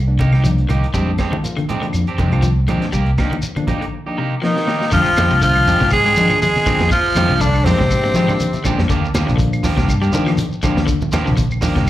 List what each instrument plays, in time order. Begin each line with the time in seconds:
Already playing: fingered electric bass C2
0.07 tine electric piano F3 A#3 D4
0.19 clean electric guitar C3 A#3 D#4 G4, fingered electric bass C3, kick, closed hi-hat, high conga, shekere
0.32 fingered electric bass C2, clean electric guitar D#4 G4, snare, claves
0.44 tine electric piano F3 A#3 D4, clean electric guitar F3, closed hi-hat, high conga, shekere
0.58 closed hi-hat
0.69 fingered electric bass C2, clean electric guitar D#3 A#3 D#4 G4, closed hi-hat, low conga, claves, shekere
0.84 closed hi-hat
0.94 fingered electric bass F2, tine electric piano F3 A#3 D4, clean electric guitar G3 G#3 C4 D4 G4, kick, closed hi-hat, high conga, shekere
1.18 clean electric guitar G#3 C4 D4 G4, kick, snare, closed hi-hat, claves, shekere
1.32 clean electric guitar D#3, high conga
1.43 tine electric piano F3 A#3 F4, closed hi-hat, high conga, shekere
1.57 clean electric guitar D3, closed hi-hat, high conga, claves
1.69 clean electric guitar G#3 C4 D4 G4, closed hi-hat, low conga, shekere
1.81 clean electric guitar D3, tine electric piano F3 A#3 D4, closed hi-hat
1.93 fingered electric bass F2, closed hi-hat, high conga, claves, shekere
2.07 clean electric guitar C4 D4 G4, closed hi-hat
2.18 fingered electric bass F2, clean electric guitar C3 G#3 C4 D4 G4, kick, closed hi-hat, high conga, shekere
2.32 fingered electric bass C2, tine electric piano F3 A#3 F4, clean electric guitar C4 D4 G4, closed hi-hat, claves
2.42 clean electric guitar F3, closed hi-hat, high conga, shekere
2.67 clean electric guitar D3 G#3 C4 D4 G4, tine electric piano F3 A#3 D4, fingered electric bass F3, closed hi-hat, low conga, claves, shekere
2.82 muted fingered electric bass stroke, snare, closed hi-hat
2.92 fingered electric bass C2, clean electric guitar G3 A#3 G4, muted clean electric guitar stroke, kick, closed hi-hat, shekere
3.06 closed hi-hat
3.18 tine electric piano F3 A#3 D4, clean electric guitar A#3 D#4 G4, kick, snare, closed hi-hat, claves, shekere
3.31 clean electric guitar D#3, closed hi-hat, high conga
3.42 closed hi-hat, high conga, shekere
3.56 clean electric guitar D3, tine electric piano F3 A#3 D4, closed hi-hat, high conga, claves
3.67 clean electric guitar A#3 D#4 G4, kick, closed hi-hat, low conga, shekere
3.81 clean electric guitar D3, closed hi-hat
4.06 tine electric piano F3 A#3 D4, clean electric guitar D#4 G4
4.17 clean electric guitar C3 A#3 D#4 G4, tine electric piano A#5
4.42 baritone saxophone D#3, tenor saxophone D#3 D#4, clean electric guitar F3, tine electric piano F3 A#3 C4 F5, snare
4.57 snare
4.67 clean electric guitar D#3 A#3 D#4 G4, snare
4.81 snare
4.91 fingered electric bass F2, clean electric guitar D3 G#3 C4 D4 G4, baritone saxophone F3, tenor saxophone F3 F4, kick, closed hi-hat, shekere
5.05 muted fingered electric bass stroke, shekere
5.17 fingered electric bass F2, clean electric guitar G#3 C4 D4 G4, snare, closed hi-hat, high conga, claves, shekere
5.30 fingered electric bass C2, clean electric guitar C3, tine electric piano F3 A#3 D4, closed hi-hat, shekere
5.42 clean electric guitar D3, baritone saxophone F3, tenor saxophone F3 F4, kick, closed hi-hat, shekere
5.55 closed hi-hat, high conga, claves, shekere
5.67 fingered electric bass F2, clean electric guitar G#3 C4 D4 G4, open hi-hat, low conga, shekere
5.80 fingered electric bass G#2, clean electric guitar C3 C4 D4 G4, kick, snare, high conga, shekere
5.90 baritone saxophone G#3, tenor saxophone G#3 G#4, kick, closed hi-hat, claves, shekere
6.05 clean electric guitar G#3 C4 D4 G4, closed hi-hat, shekere
6.16 fingered electric bass F3, tine electric piano F3 A#3 D4, clean electric guitar G#3 D4 G4, snare, closed hi-hat, high conga, shekere
6.30 clean electric guitar F3, high conga, claves, shekere
6.41 baritone saxophone G#3, tenor saxophone G#3 G#4, closed hi-hat, high conga, shekere
6.55 snare, high conga, shekere
6.65 clean electric guitar D3 G#3 C4 D4 G4, tine electric piano F3 A#3 F4, kick, closed hi-hat, low conga, claves, shekere
6.79 fingered electric bass F2, snare, shekere
6.90 baritone saxophone F3, tenor saxophone F3 F4, muted clean electric guitar stroke, kick, closed hi-hat, shekere
7.04 muted fingered electric bass stroke, shekere
7.15 fingered electric bass F2, clean electric guitar G#3 C4 D4 G4, snare, closed hi-hat, high conga, claves, shekere
7.29 fingered electric bass C2, tine electric piano F3 A#3 D4, muted clean electric guitar stroke, shekere
7.40 clean electric guitar D3, tenor saxophone D3 D4, baritone saxophone D3, kick, closed hi-hat, shekere
7.55 claves, shekere
7.64 fingered electric bass F2, tenor saxophone C3 C4, baritone saxophone C3, tine electric piano F3 A#3 D4, clean electric guitar G#3 C4 D4 G4, open hi-hat, low conga, shekere
7.79 fingered electric bass G#2, clean electric guitar C3, kick, snare, closed hi-hat, high conga, shekere
7.90 tine electric piano A#3 D4, kick, snare, closed hi-hat, claves, shekere
8.04 tine electric piano F3 A#3 D4, muted clean electric guitar stroke, snare, shekere
8.14 fingered electric bass F3, clean electric guitar G#3 C4 D4 G4, snare, closed hi-hat, high conga, shekere
8.28 clean electric guitar F3, tine electric piano F3 A#3 D4, high conga, claves, shekere
8.40 closed hi-hat, high conga, shekere
8.53 closed hi-hat, high conga, shekere
8.64 clean electric guitar D3 G#3 C4 D4 G4, tine electric piano F3 A#3 D4, kick, closed hi-hat, low conga, claves, shekere
8.78 fingered electric bass F2, snare, shekere
8.89 fingered electric bass D#2, clean electric guitar D3 A#3 D4 G4, muted clean electric guitar stroke, kick, snare, closed hi-hat, shekere
9.03 muted fingered electric bass stroke, shekere
9.14 fingered electric bass D#2, clean electric guitar F3 A#3 D4 G4, snare, closed hi-hat, high conga, claves, shekere
9.26 fingered electric bass A#1, clean electric guitar C3, tine electric piano F3 A#3 D4, snare, closed hi-hat, shekere
9.37 clean electric guitar D3, kick, closed hi-hat, shekere
9.53 closed hi-hat, claves, shekere
9.63 fingered electric bass D#2, clean electric guitar F3 A#3 D4 G4, snare, open hi-hat, low conga, shekere
9.77 fingered electric bass G2, clean electric guitar C3 A#3 D4 G4, kick, snare, closed hi-hat, high conga, shekere
9.89 kick, closed hi-hat, claves, shekere
10.02 clean electric guitar G3 A#3 D4 G4, closed hi-hat, shekere
10.12 fingered electric bass D#3, tine electric piano F3 A#3 D4, clean electric guitar F3 A#3 D4 G4, closed hi-hat, high conga, shekere
10.26 clean electric guitar F3, snare, claves, shekere
10.37 closed hi-hat, high conga, shekere
10.52 shekere
10.63 clean electric guitar D3 F3 A#3 D4 G4, tine electric piano F3 A#3 D4, kick, closed hi-hat, low conga, claves, shekere
10.77 fingered electric bass D#2, snare, shekere
10.87 clean electric guitar D3, kick, closed hi-hat, shekere
11.01 muted fingered electric bass stroke, high conga, low conga, shekere
11.12 fingered electric bass D#2, clean electric guitar F3 A#3 D4 G4, snare, closed hi-hat, high conga, claves, shekere
11.25 fingered electric bass A#1, clean electric guitar C3, tine electric piano F3 A#3 D4, snare, shekere
11.37 clean electric guitar D3, kick, closed hi-hat, shekere
11.51 claves, shekere
11.61 fingered electric bass D#2, clean electric guitar F3 A#3 D4 G4, tine electric piano F3 A#3 D4, open hi-hat, low conga, shekere
11.75 fingered electric bass G2, clean electric guitar C3 A#3 D4 G4, kick, snare, closed hi-hat, high conga, shekere